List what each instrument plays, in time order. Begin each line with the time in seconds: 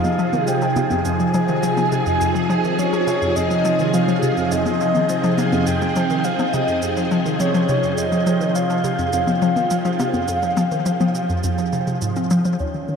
Already playing: string machine C3 F3 G#4, synth texture D#4 D#5, soft synth lead F5
0.04 synth arpeggio sound F3, high conga, cabasa
0.19 synth arpeggio sound F3, cabasa
0.33 synth arpeggio sound D#3, high conga, cabasa
0.47 synth arpeggio sound F3, soft synth lead G5, cabasa
0.62 synth arpeggio sound F3, cabasa
0.76 synth arpeggio sound C3, high conga, cabasa
0.90 synth arpeggio sound F2, high conga, cabasa
1.05 synth arpeggio sound F2, soft synth lead G#5, cabasa
1.20 synth arpeggio sound F3, cabasa
1.34 synth arpeggio sound F3, cabasa
1.48 synth arpeggio sound D#3, cabasa
1.63 synth arpeggio sound F3, cabasa
1.77 synth arpeggio sound F3, high conga, cabasa
1.92 synth arpeggio sound C3, cabasa
2.06 synth arpeggio sound F2, cabasa
2.21 synth arpeggio sound F2, cabasa
2.35 synth arpeggio sound F3, cabasa
2.50 synth arpeggio sound F3, cabasa
2.64 synth arpeggio sound D#3, cabasa
2.79 synth arpeggio sound F3, soft synth lead C#5, cabasa
2.93 synth arpeggio sound F3, cabasa
3.07 synth arpeggio sound C3, cabasa
3.22 synth arpeggio sound F2, cabasa
3.36 synth arpeggio sound F2, soft synth lead D#5, synth texture G5, cabasa
3.51 synth arpeggio sound F3, cabasa
3.65 synth arpeggio sound F3, cabasa
3.79 synth arpeggio sound D#3, cabasa
3.94 synth arpeggio sound F3, soft synth lead F5, cabasa
4.08 synth arpeggio sound F3, cabasa
4.23 synth arpeggio sound C3, cabasa
4.37 synth arpeggio sound F2, cabasa
4.51 synth arpeggio sound F2, soft synth lead D#5, cabasa
4.66 synth arpeggio sound F3, high conga, cabasa
4.80 synth arpeggio sound F3, cabasa
4.95 synth arpeggio sound D#3, high conga, cabasa
5.09 synth arpeggio sound F3, cabasa
5.24 synth arpeggio sound F3, cabasa
5.38 synth arpeggio sound C3, soft synth lead F5, high conga, cabasa
5.52 synth arpeggio sound F2, high conga, cabasa
5.67 synth arpeggio sound F2, soft synth lead G5, cabasa
5.82 synth arpeggio sound F3, cabasa
5.96 synth arpeggio sound F3, cabasa
6.10 synth arpeggio sound D#3, cabasa
6.24 synth arpeggio sound F3, soft synth lead F5, cabasa
6.39 synth arpeggio sound F3, high conga, cabasa
6.53 synth arpeggio sound C3, soft synth lead D#5, cabasa
6.68 synth arpeggio sound F2, cabasa
6.82 synth arpeggio sound F2, cabasa
6.97 synth arpeggio sound F3, cabasa
7.11 synth arpeggio sound F3, cabasa
7.26 synth arpeggio sound D#3, cabasa
7.40 synth arpeggio sound F3, soft synth lead C#5, cabasa
7.54 synth arpeggio sound F3, cabasa
7.69 synth arpeggio sound C3, cabasa
7.83 synth arpeggio sound F2, cabasa
7.97 synth arpeggio sound F2, soft synth lead D#5, cabasa
8.12 synth arpeggio sound F3, cabasa
8.26 synth arpeggio sound F3, cabasa
8.41 synth arpeggio sound D#3, cabasa
8.55 synth arpeggio sound F3, soft synth lead F5, cabasa
8.70 synth arpeggio sound F3, cabasa
8.84 synth arpeggio sound C3, cabasa
8.99 synth arpeggio sound F2, cabasa
9.13 synth arpeggio sound F2, soft synth lead F5, cabasa
9.27 synth arpeggio sound F3, high conga, cabasa
9.42 synth arpeggio sound F3, cabasa
9.56 synth arpeggio sound D#3, high conga, cabasa
9.71 synth arpeggio sound F3, cabasa
9.85 synth arpeggio sound F3, cabasa
9.99 synth arpeggio sound C3, high conga, cabasa
10.14 synth arpeggio sound F2, high conga, cabasa
10.28 synth arpeggio sound F2, cabasa
10.43 synth arpeggio sound F3, cabasa
10.57 synth arpeggio sound F3, high conga, cabasa
10.72 synth arpeggio sound D#3, cabasa
10.86 synth arpeggio sound F3, cabasa
11.00 synth arpeggio sound F3, high conga, cabasa
11.15 synth arpeggio sound C3, cabasa
11.30 synth arpeggio sound F2, cabasa
11.44 synth arpeggio sound F2, cabasa
11.58 synth arpeggio sound F3, cabasa
11.73 synth arpeggio sound C3, cabasa
11.87 synth arpeggio sound C3, cabasa
12.02 synth arpeggio sound G#2, cabasa
12.16 synth arpeggio sound C4, cabasa
12.30 synth arpeggio sound F3, cabasa
12.45 synth arpeggio sound F3, cabasa
12.59 synth arpeggio sound D#2, string machine D#3, soft synth lead C#5, cabasa
12.74 synth arpeggio sound D#3, cabasa
12.88 synth arpeggio sound D#3, cabasa